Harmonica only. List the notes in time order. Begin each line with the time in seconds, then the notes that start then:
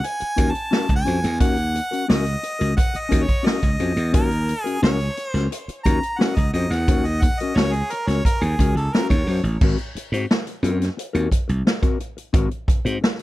0.06 G#5
0.51 A5
0.96 G#5
1.41 F#5
2.09 D#5
2.77 F#5
3.00 D#5
3.23 C#5
3.46 D#5
4.15 A#4
4.63 G#4
4.83 C#5
5.28 C5
5.84 A#5
6.19 F#5
6.35 D#5
6.53 D#5
6.72 F#5
7.06 D#5
7.22 F#5
7.40 D#5
7.56 C#5
7.73 G#4
7.91 A#4
8.08 C#5
8.25 A#4
8.42 G#4
8.77 A4
8.93 A#4
9.10 C#5